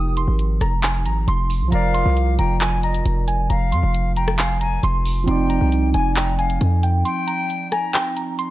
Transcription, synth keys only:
Already playing: D#6
0.17 C6
0.61 A#5
0.84 G#5
1.06 A#5
1.28 C6
1.72 A#5
1.94 C6
2.39 A#5
2.61 G#5
2.84 A#5
3.28 G#5
3.50 A#5
3.72 C6
4.17 A#5
4.39 G#5
4.61 A#5
4.84 C6
5.28 C6
5.50 A#5
5.94 G#5
6.17 G5
6.39 G#5
6.83 G5
7.05 C6
7.27 A#5
7.72 G#5
7.93 G5
8.17 A#5
8.39 C6

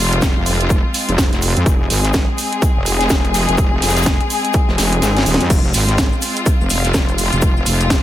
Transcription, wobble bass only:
0.00 F1
0.37 F1
1.09 F1
1.32 F1
1.56 F2
1.66 F1
1.90 G#1
2.77 F1
3.10 F1
3.49 F1
3.82 F1
4.68 F1
4.78 F1
5.02 G#1
5.26 D#1
5.41 F2
5.50 F1
5.74 G#1
6.61 F1
6.94 F1
7.33 F1
7.66 F1

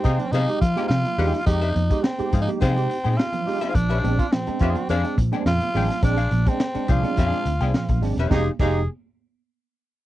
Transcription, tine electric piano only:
0.04 D#4 G4
0.48 G#3 D#4 G4
0.62 F3
0.76 G#3 D#4 G4
0.90 F3
1.18 G#3 D#4 G4
1.33 D#4 G4
1.47 G#3 D#4 G4
1.76 F3
1.90 G#3 D#4 G4
2.18 G#3 D#4 G4
2.32 F3
2.47 G#3 D#4 G4
2.61 F3
2.76 G#3 D#4 G4
2.90 D#4 G4
3.18 D#4 G4
3.34 F3
3.46 G#3 D#4 G4
3.76 A#2 F3
4.03 G#3 C4 D4
4.18 C4 D4
4.32 A#2 F3
4.47 G#3 C4 D4
4.60 C4 D4
5.04 G#3 C4 D4
5.17 A#2 F3
5.32 G#3 C4 D4
5.46 A#2 F3
5.74 G#3 C4 D4
5.89 C4 D4
6.03 G#3 C4 D4
6.31 A#2 F3
6.47 G#3 C4 D4
6.74 G#3 C4 D4
6.88 A#2 F3
7.03 G#3 C4 D4
7.16 A#2 F3
7.30 G#3 C4 D4
7.44 C4 D4
7.73 A#2 F3
8.02 G#3 C4 D4
8.17 C4 D4
8.30 G#3 D#4 G4
8.60 G#3 D#4 G4

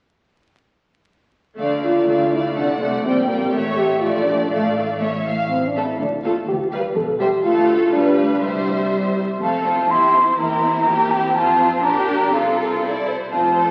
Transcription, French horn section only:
1.84 F4
2.33 E4
2.57 D4
2.82 A3
3.06 C4
3.28 A#3
3.77 G4
4.01 F4
4.24 D4
4.49 A3
5.50 C4
5.68 D4
5.83 E4
6.00 D4
6.25 F4
6.48 G4
6.66 G4
6.81 B4
6.96 A4
7.20 G4
7.44 F4
7.93 D4
8.43 G3

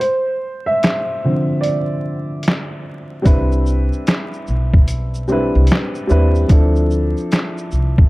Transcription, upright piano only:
0.00 C5
0.66 E5
1.24 D3 F3 C4
1.61 D5
3.22 G3 C4 D4 E4
3.26 B4
5.28 G3 C4 D4 E4
5.32 B4
6.07 G3 C4 D4 E4 B4
6.48 F3 C4 D4 E4
6.52 A4

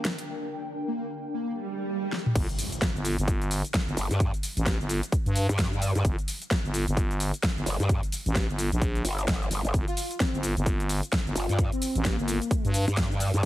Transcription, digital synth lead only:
0.88 A#3
0.97 A#3
1.34 A#3
1.43 A#3
9.88 F4
9.97 F4
10.20 C4
10.34 C4
11.36 F4
11.72 C4
12.05 A#3

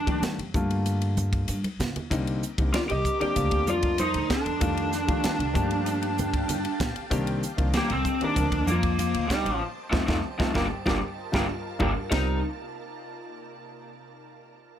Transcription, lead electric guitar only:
Already playing: D4
2.74 F4
2.89 G4
3.22 G4
3.69 F4
4.00 D#4
4.33 D4
7.75 A#3
7.91 C4
8.23 D4
8.67 A#3
9.28 G3
9.91 F3 A3 C4
10.07 F3 A3 C4
10.39 F3 A3 C4
10.55 G3 A#3 D4
10.87 G3 A#3 D4
11.35 G3 A#3 D4
11.80 G3 A#3 D4
12.11 D#4

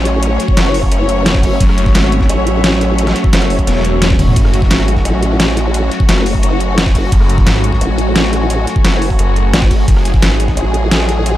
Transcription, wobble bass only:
Already playing: A1
0.57 F#1
0.92 F#1
2.29 A1
3.33 F#1
5.05 A1
6.09 F#1
6.43 F#1
7.81 A1
8.85 F#1
9.54 G#1
10.57 A1

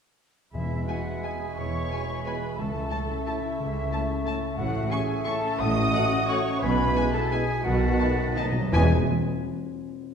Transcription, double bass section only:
0.54 E1
1.57 E1
2.59 C#2
3.58 C#2
4.58 A1
5.60 A1
6.62 B1
7.65 B1
8.73 E1

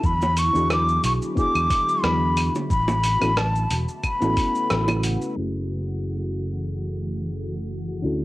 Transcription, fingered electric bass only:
0.03 E2
0.55 E2
1.04 B1
1.55 E2
2.04 E2
2.70 A1
3.22 A1
3.71 E1
4.22 A1
4.71 A1
5.37 F#1
8.04 D2

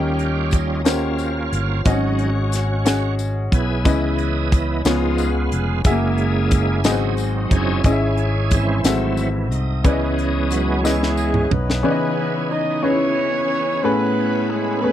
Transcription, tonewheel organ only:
Already playing: G3 A#3 C#4 F4 G4
0.53 D#4
0.85 A#3 C#4 F4
1.85 F#3 C#4 D#4 F#4
3.53 B3 E4 G#4
3.87 E3 B3 D#5
4.54 E4
4.85 F3 G#3 B3 D#4 F4
5.85 C#3 G#3 A#3 E4 G#4
6.85 F#3 C4 D#4
7.52 C#4 E4 G#4
7.86 G#3 C#4 E4
8.54 E3 C4 E4
8.85 F#3 A3 C4 E4
9.51 D#4
9.84 E3 G#3 B3 C#4 D#5
11.85 E3 B3 C#4 G#4
13.83 A3 B4

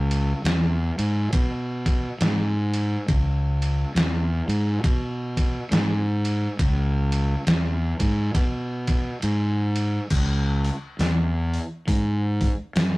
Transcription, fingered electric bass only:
Already playing: C#2
0.44 E2
0.98 G#2
1.33 B2
2.21 G#2
3.08 C#2
3.95 E2
4.48 G#2
4.84 B2
5.71 G#2
6.59 C#2
7.47 E2
8.00 G#2
8.34 B2
9.23 G#2
10.11 C#2
10.99 E2
11.88 G#2
12.76 F#2

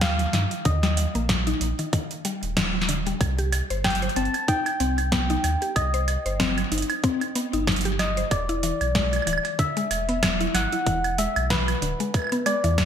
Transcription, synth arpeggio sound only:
0.02 G3
0.33 D#3
0.65 D3
0.83 G3
1.15 A#3
1.47 D#4
1.79 D#3
1.93 D#3
2.25 G3
2.57 D#3
2.89 D3
3.07 G3
3.39 G4
3.70 C5
4.02 C5
4.16 C4
4.48 D#4
4.80 C4
5.12 B3
5.30 D#4
5.62 G4
5.94 C5
6.26 C5
6.40 C4
6.72 D#4
7.04 C4
7.36 B3
7.53 D#4
7.85 G4
8.17 C5
8.49 E4
8.63 E3
8.95 G#3
9.27 E3
9.59 D3
9.77 G#3
10.09 B3
10.41 E4
10.73 E4
10.87 E3
11.18 G#3
11.50 E3
11.82 D3
12.00 G#3
12.32 B3
12.46 G#3
12.64 E3

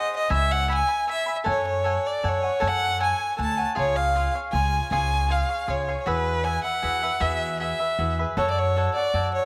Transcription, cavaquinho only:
Already playing: G#4 C5 D#5 F#5
0.29 C#5 E5 G#5 B5
0.68 C#5 E5 G#5 B5
0.88 E5 G#5 B5
1.07 C#5 E5 G#5 B5
1.26 E5 G#5 B5
1.44 A4 C#5 F#5 G#5
1.84 A4 C#5 F#5 G#5
2.23 A4 C#5 F#5 G#5
2.42 C#5 F#5 G#5
2.60 A4 C#5 F#5 G#5
2.99 A4 C#5 F#5 G#5
3.37 A4 C#5 F#5 G#5
3.57 C#5 F#5 G#5
3.75 F4 G#4 C#5 F5
4.15 F4 G#4 C#5 F5
4.35 G#4 C#5 F5
4.53 F4 G#4 C#5 F5
4.92 F4 G#4 C#5 F5
5.28 F4 G#4 C#5 F5
5.49 G#4 C#5 F5
5.67 F4 G#4 C#5 F5
5.88 G#4 C#5 F5
6.06 F#4 G#4 B4 E5
6.44 F#4 G#4 B4 E5
6.64 G#4 B4 E5
6.82 F#4 G#4 B4 E5
7.03 G#4 B4 E5
7.20 F#4 G#4 B4 E5
7.60 F#4 G#4 B4 E5
7.79 G#4 B4 E5
7.98 F#4 G#4 B4 E5
8.19 G#4 B4 E5
8.37 F#4 A4 C#5 F#5
8.76 F#4 A4 C#5 F#5
8.96 A4 C#5 F#5
9.14 F#4 A4 C#5 F#5

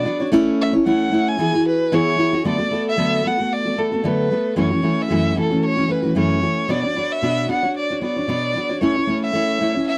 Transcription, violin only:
Already playing: D5
0.61 E5
0.86 F#5
1.29 G#5
1.68 B4
1.95 C#5
2.48 D5
2.89 E5
3.27 F#5
3.53 D5
3.79 A4
4.07 B4
4.59 C#5
5.02 E5
5.40 A4
5.65 C#5
5.91 B4
6.19 C#5
6.70 D5
7.12 E5
7.51 F#5
7.77 D5
8.05 D5
8.83 C#5
9.24 E5
9.88 E5

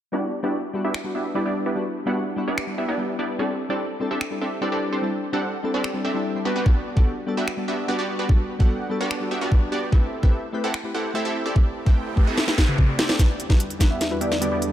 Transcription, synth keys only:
0.12 G3 B3 D4 E4 F#4
0.43 G3 B3 D4 E4 F#4
0.73 G3 B3 D4 E4 F#4
1.04 G3 B3 D4 E4 F#4
1.34 G3 B3 D4 E4 G4
1.75 G3 B3 D4 E4 F#4
2.06 G3 B3 D4 E4 F#4
2.36 G3 B3 D4 E4 F#4
2.67 G3 B3 D4 E4 F#4
2.97 G3 B3 D4 E4 G4
3.38 G3 C4 D4 E4 A4
3.69 G3 C4 D4 E4 A4
3.99 G3 C4 D4 E4 A4
4.30 G3 C4 D4 E4 A4
4.61 G3 C4 D4 E4 B4
5.02 G3 C4 D4 E4 A4
5.32 G3 C4 D4 E4 A4
5.63 G3 C4 D4 E4 A4
5.94 G3 C4 D4 E4 A4
6.14 G3 C4 D4 E4 A4
6.34 G3 C4 D4 E4 C5
6.45 G3 B3 D4 F#4 B4
6.65 G3 B3 D4 F#4 A4
6.96 G3 B3 D4 F#4 A4
7.26 G3 B3 D4 F#4 A4
7.57 G3 B3 D4 F#4 A4
7.87 G3 B3 D4 F#4 B4
8.28 G3 B3 D4 F#4 A4
8.59 G3 B3 D4 F#4 A4
8.89 G3 B3 D4 F#4 A4
9.20 G3 B3 D4 F#4 A4
9.50 G3 B3 D4 F#4 B4
9.91 A3 C4 E4 G4 B4
10.22 A3 C4 E4 G4 B4
10.52 A3 C4 E4 G4 B4
10.83 A3 C4 E4 G4 B4
11.14 A3 C4 E4 G4 C5
11.54 A3 C4 E4 G4 B4
11.85 A3 C4 E4 G4 B4
12.16 A3 C4 E4 G4 B4
12.47 A3 C4 E4 G4 B4
12.67 A3 C4 E4 G4 B4
12.88 A3 C4 E4 G4 D5
12.98 A3 C4 E4 G4 C5
13.18 G3 D4 E4 F#4 B4
13.49 G3 D4 E4 F#4 B4
13.79 G3 D4 E4 F#4 B4
14.10 G3 D4 E4 F#4 B4
14.40 G3 D4 E4 F#4 D5

